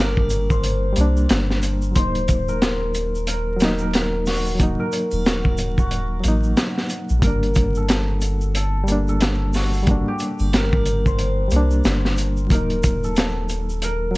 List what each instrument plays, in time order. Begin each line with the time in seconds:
Already playing: sub bass G1, reed electric piano G3 A#3 D4, hammered dulcimer G4
0.00 hammered dulcimer A#4
0.17 kick
0.30 closed hi-hat, shaker
0.50 hammered dulcimer C5, kick, shaker
0.63 closed hi-hat, shaker
0.93 reed electric piano G3, closed hi-hat, shaker
0.97 sub bass C2, reed electric piano A#3
1.01 reed electric piano D4
1.17 shaker
1.29 sub bass G1, snare, closed hi-hat, shaker
1.50 snare
1.62 closed hi-hat, shaker
1.82 shaker
1.91 reed electric piano F#3, shaker
1.95 sub bass D#1, reed electric piano A#3 D#4, hammered dulcimer C5, kick, closed hi-hat
2.15 closed hi-hat
2.28 kick, closed hi-hat, shaker
2.48 hammered dulcimer A#4, shaker
2.62 snare, closed hi-hat, shaker
2.94 closed hi-hat, shaker
3.15 shaker
3.27 hammered dulcimer A#4, closed hi-hat, shaker
3.56 reed electric piano F#3, closed hi-hat, shaker
3.61 reed electric piano A#3, snare
3.65 reed electric piano D#4
3.79 hammered dulcimer A#4, shaker
3.93 snare, closed hi-hat, shaker
4.26 hammered dulcimer F#4, snare, open hi-hat, shaker
4.46 shaker
4.55 reed electric piano F#3
4.59 reed electric piano A#3 D#4, kick, closed hi-hat, shaker
4.80 hammered dulcimer A#4
4.92 closed hi-hat, shaker
5.11 sub bass D#1, triangle, shaker
5.25 hammered dulcimer F#4, snare, closed hi-hat, shaker
5.45 kick
5.58 closed hi-hat, shaker
5.78 hammered dulcimer F#4, kick, shaker
5.91 closed hi-hat, shaker
6.20 reed electric piano F#3 A#3, closed hi-hat, shaker
6.25 sub bass A1, reed electric piano D#4
6.43 shaker
6.57 snare, closed hi-hat, shaker
6.78 snare
6.89 closed hi-hat, shaker
7.09 sub bass A#1, shaker
7.19 reed electric piano G3 A#3, kick, closed hi-hat, shaker
7.24 reed electric piano D4, hammered dulcimer A#4
7.43 closed hi-hat
7.54 kick, closed hi-hat, shaker
7.75 hammered dulcimer A4, shaker
7.88 snare, closed hi-hat, shaker
8.21 closed hi-hat, shaker
8.41 shaker
8.55 hammered dulcimer A4, closed hi-hat, shaker
8.84 reed electric piano G3, shaker
8.88 reed electric piano A#3 D4, closed hi-hat
9.08 hammered dulcimer A4, shaker
9.20 snare, closed hi-hat, shaker
9.53 hammered dulcimer F#4, snare, open hi-hat, shaker
9.74 shaker
9.83 reed electric piano G3
9.87 reed electric piano A#3, kick, closed hi-hat, shaker
9.91 reed electric piano D4
10.08 hammered dulcimer G4
10.19 closed hi-hat, shaker
10.39 sub bass G1, triangle, shaker
10.53 hammered dulcimer A#4, snare, closed hi-hat, shaker
10.73 kick
10.85 closed hi-hat, shaker
11.06 hammered dulcimer C5, kick, shaker
11.19 closed hi-hat, shaker
11.48 sub bass C2, reed electric piano G3, closed hi-hat, shaker
11.52 reed electric piano A#3
11.56 reed electric piano D4
11.71 shaker
11.84 sub bass G1, snare, closed hi-hat, shaker
12.05 snare
12.17 closed hi-hat, shaker
12.37 shaker
12.47 sub bass D#1, reed electric piano F#3 A#3, kick, shaker
12.51 reed electric piano D#4, hammered dulcimer A#4, closed hi-hat
12.70 closed hi-hat
12.83 kick, closed hi-hat, shaker
13.04 hammered dulcimer A4, shaker
13.15 snare, closed hi-hat, shaker
13.49 closed hi-hat, shaker
13.69 shaker
13.82 hammered dulcimer A#4, closed hi-hat, shaker
14.11 reed electric piano F#3